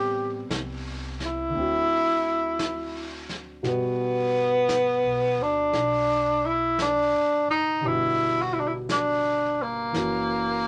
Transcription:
Already playing: upright bass A1, grand piano G3 B3 C4 A4, tenor saxophone G4
0.49 upright bass C2, brush sweep, snare, hi-hat pedal
1.20 snare
1.25 tenor saxophone E4
1.49 grand piano D3 A3
1.55 upright bass D2, grand piano C4, brush sweep
1.60 grand piano F#4
2.59 brush sweep, snare, hi-hat pedal
3.29 snare
3.63 upright bass G1, grand piano B2 G3 B3 F#4, brush sweep, snare
3.68 tenor saxophone B3
4.69 brush sweep, snare, hi-hat pedal
5.03 upright bass B1
5.38 upright bass D2
5.42 tenor saxophone D4
5.73 upright bass B1, brush sweep, snare
6.46 tenor saxophone E4
6.79 tenor saxophone D4, brush sweep, snare, hi-hat pedal
7.13 upright bass G1
7.48 upright bass F#1, tenor saxophone D#4
7.81 upright bass G1, grand piano B2 D3 G3, brush sweep
7.86 tenor saxophone E4, grand piano F#4
8.41 tenor saxophone F#4
8.53 tenor saxophone E4
8.60 tenor saxophone D4
8.67 tenor saxophone E4
8.89 tenor saxophone D4, brush sweep, snare, hi-hat pedal
9.62 tenor saxophone A#3
9.92 upright bass F#1, grand piano E3 A#3 C#4, brush sweep, snare
9.97 grand piano F#4

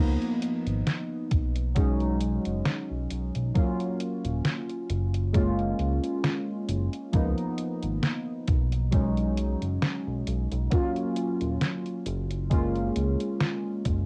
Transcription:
Already playing: analog synth bass C#2, synth keys F3 A#3
0.00 synth keys B3 D#4
0.22 closed hi-hat
0.42 closed hi-hat
0.67 analog synth bass G#1, closed hi-hat
0.87 snare, closed hi-hat
1.31 analog synth bass B1, kick, closed hi-hat
1.56 closed hi-hat
1.75 synth keys F#3 G#3 C#4 D#4, kick, closed hi-hat
2.00 closed hi-hat
2.21 closed hi-hat
2.45 analog synth bass F#1, closed hi-hat
2.65 snare, closed hi-hat
2.91 analog synth bass B1
3.10 analog synth bass B1, closed hi-hat
3.35 analog synth bass B1, closed hi-hat
3.54 synth keys F#3 A#3 C#4 F4, kick, closed hi-hat
3.80 closed hi-hat
4.00 closed hi-hat
4.25 analog synth bass D#1, closed hi-hat
4.45 snare, closed hi-hat
4.70 closed hi-hat
4.90 analog synth bass F#1, closed hi-hat
5.14 closed hi-hat
5.33 synth keys G#3 A#3 C#4 F4, kick, closed hi-hat
5.59 closed hi-hat
5.79 analog synth bass C#2, closed hi-hat
6.04 closed hi-hat
6.24 snare, closed hi-hat
6.69 analog synth bass F#1, closed hi-hat
6.93 closed hi-hat
7.12 analog synth bass C#2, synth keys F3 A#3 B3 D#4, kick, closed hi-hat
7.38 closed hi-hat
7.58 closed hi-hat
7.83 analog synth bass G#1, closed hi-hat
8.03 snare, closed hi-hat
8.48 analog synth bass B1, kick, closed hi-hat
8.72 closed hi-hat
8.91 synth keys F#3 G#3 C#4 D#4, kick, closed hi-hat
9.17 closed hi-hat
9.37 closed hi-hat
9.62 analog synth bass F#1, closed hi-hat
9.82 snare, closed hi-hat
10.07 analog synth bass B1
10.27 analog synth bass B1, closed hi-hat
10.52 analog synth bass B1, closed hi-hat
10.70 synth keys F#3 A#3 C#4 F4, kick, closed hi-hat
10.96 closed hi-hat
11.16 closed hi-hat
11.41 analog synth bass D#1, closed hi-hat
11.61 snare, closed hi-hat
11.86 closed hi-hat
12.06 analog synth bass F#1, closed hi-hat
12.31 closed hi-hat
12.50 synth keys G#3 A#3 C#4 F4, kick, closed hi-hat
12.76 closed hi-hat
12.96 analog synth bass C#2, closed hi-hat
13.20 closed hi-hat
13.40 snare, closed hi-hat
13.85 analog synth bass F#1, kick, closed hi-hat

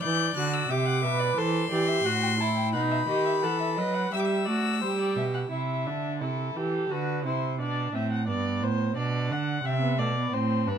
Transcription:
0.00 cello E3, violin D5 G6
0.36 cello D3, viola F#4, violin F#6
0.53 violin E6
0.70 cello C3, viola G4, violin E5 D6
0.86 violin F#5
1.03 cello B2, viola B4, violin E5
1.20 violin D5
1.36 cello E3, viola A4, violin C5 C6
1.71 cello E3, viola G4, violin D5
1.87 violin E5
2.05 cello A2, viola F#4, violin F#5
2.22 violin G5
2.40 viola E4, violin A5
2.56 violin G5
2.73 cello B2, viola D#4, violin F#5 B5
2.91 violin E5
3.08 cello D#3, viola G4, violin D#5
3.25 violin E5
3.42 cello E3, viola A4, violin F#5
3.60 violin E5
3.76 cello F#3, viola B4, violin D#5
3.94 violin F#5
4.12 cello G3, viola G4, violin E5 E6
4.19 violin D6
4.26 violin E6
4.45 cello A3, viola F#4, violin D5
4.81 cello G3, viola G4, violin C5
4.99 violin D5
5.16 cello B2, violin E5
5.34 violin F#5
5.51 cello C3, viola E4, violin E5
5.86 cello D3, viola D4
6.21 cello C3, viola E4, violin A4
6.56 cello E3, viola G4
6.90 cello D3, viola F#4, violin B4
7.25 cello C3, viola E4, violin C5
7.59 cello B2, viola D4, violin D5
7.94 cello A2, viola C4, violin E5
8.12 violin F#5
8.28 cello G2, viola B3, violin D5
8.62 cello A2, violin C5
8.96 cello B2, viola D4, violin D5
9.31 cello D3, violin F#5
9.65 cello C3, viola C4, violin E5
9.82 viola B3
9.99 cello B2, viola A3, violin D5
10.17 viola B3
10.33 cello A2, viola C4, violin C5
10.66 cello G2, viola D4, violin B4

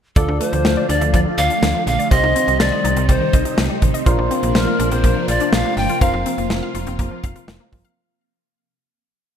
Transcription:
0.16 fm bass D2, string machine D3 F3 A3 F4, synth keys D4 F4 A4 D5, pan flute A4, synth arpeggio sound D5, kick, closed hi-hat
0.28 fm bass D2, synth arpeggio sound D4
0.40 synth arpeggio sound A3, pan flute C5, closed hi-hat
0.53 fm bass D2, synth arpeggio sound F3, closed hi-hat
0.65 fm bass D2, synth arpeggio sound D3, snare
0.77 synth arpeggio sound D5
0.89 fm bass D2, synth arpeggio sound D4, pan flute D5, closed hi-hat
1.01 fm bass D2, synth arpeggio sound A3, closed hi-hat
1.14 fm bass D2, synth arpeggio sound F3, pan flute D5, kick, closed hi-hat
1.26 synth arpeggio sound D3
1.38 fm bass D2, synth arpeggio sound D5, pan flute F5, closed hi-hat
1.50 synth arpeggio sound D4, closed hi-hat
1.62 fm bass D2, snare
1.75 synth arpeggio sound F3
1.87 fm bass A#1, synth arpeggio sound D3, pan flute F5, closed hi-hat
1.99 synth arpeggio sound D5, closed hi-hat
2.11 fm bass C2, string machine C3 D#3 G3 D#4, synth keys C4 D#4 G4 C5, synth arpeggio sound D#5, pan flute D#5, kick, closed hi-hat
2.23 fm bass C2, synth arpeggio sound D#4
2.35 synth arpeggio sound C4, closed hi-hat
2.48 fm bass C2, synth arpeggio sound G3, closed hi-hat
2.60 fm bass C2, synth arpeggio sound D#3, pan flute D5, snare
2.72 synth arpeggio sound D#5
2.84 fm bass C2, synth arpeggio sound D#4, closed hi-hat
2.97 fm bass C2, synth arpeggio sound C4, closed hi-hat
3.09 fm bass C2, synth arpeggio sound G3, pan flute C5, kick, closed hi-hat
3.21 synth arpeggio sound D#3
3.33 fm bass C2, synth arpeggio sound D#5, kick, closed hi-hat
3.45 synth arpeggio sound D#4, closed hi-hat
3.58 fm bass C2, snare
3.70 synth arpeggio sound G3
3.82 fm bass A1, synth arpeggio sound D#3, kick, closed hi-hat
3.94 synth arpeggio sound D#5, closed hi-hat
4.06 fm bass A#1, string machine F3 A#3 D4, synth keys D4 F4 A#4 C5, synth arpeggio sound F4, kick, closed hi-hat
4.19 fm bass A#1, synth arpeggio sound D4
4.31 synth arpeggio sound C4, closed hi-hat
4.43 fm bass A#1, synth arpeggio sound A#3, closed hi-hat
4.55 fm bass A#1, synth arpeggio sound F3, pan flute A#4, snare
4.67 synth arpeggio sound F4
4.79 fm bass A#1, synth arpeggio sound D4, closed hi-hat
4.91 fm bass A#1, synth arpeggio sound C4, pan flute C5, closed hi-hat
5.04 fm bass A#1, synth arpeggio sound A#3, kick, closed hi-hat
5.16 synth arpeggio sound F3
5.28 fm bass A#1, synth arpeggio sound F4, pan flute D5, closed hi-hat
5.40 synth arpeggio sound D4, closed hi-hat
5.52 fm bass A#1, pan flute F5, snare
5.65 synth arpeggio sound A#3
5.77 fm bass G1, synth arpeggio sound F3, pan flute G5, open hi-hat
5.89 synth arpeggio sound F4, closed hi-hat
6.01 fm bass F1, synth keys C4 F4 A#4 C5, string machine F4, pan flute F5, synth arpeggio sound F5, kick, closed hi-hat
6.13 fm bass F1, synth arpeggio sound F4
6.26 synth arpeggio sound C4, closed hi-hat
6.38 fm bass F1, synth arpeggio sound A#3, closed hi-hat
6.50 fm bass F1, synth arpeggio sound F3, snare
6.63 synth arpeggio sound F5
6.75 fm bass F1, synth arpeggio sound F4, closed hi-hat
6.87 fm bass F1, synth arpeggio sound C4, closed hi-hat
6.99 fm bass F1, synth arpeggio sound A#3, kick, closed hi-hat
7.11 synth arpeggio sound F3
7.24 fm bass F1, synth arpeggio sound F5, kick, closed hi-hat
7.36 synth arpeggio sound F4, closed hi-hat
7.48 fm bass F1, snare
7.60 synth arpeggio sound A#3
7.72 fm bass G1, synth arpeggio sound F3, kick, open hi-hat
7.85 synth arpeggio sound F5, closed hi-hat

